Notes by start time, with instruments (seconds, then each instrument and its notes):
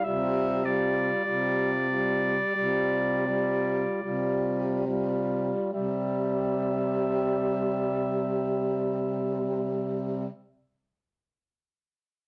0.04 baritone saxophone C3, tenor saxophone G3, alto saxophone F4, clarinet E5
0.64 tenor saxophone G3, alto saxophone F4, clarinet D5
1.25 baritone saxophone C3, tenor saxophone G3, alto saxophone F4
1.89 tenor saxophone G3, alto saxophone F4
2.56 baritone saxophone C3, tenor saxophone G3, alto saxophone F4
3.27 tenor saxophone G3, alto saxophone F4
4.02 baritone saxophone C3, tenor saxophone G3, alto saxophone F4
4.86 tenor saxophone G3, alto saxophone F4
5.73 baritone saxophone C3, tenor saxophone G3, alto saxophone G4, clarinet E5